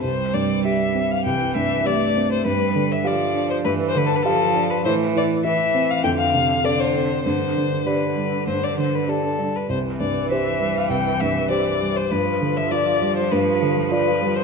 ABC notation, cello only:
X:1
M:4/4
L:1/8
Q:1/4=100
K:C
V:1 name="Cello" clef=bass
G,4 E,2 A,2 | G,2 F,2 E, D, F,2 | E,2 E,2 D,2 D,2 | D,2 D,4- D, z |
E,8 | F,8 |]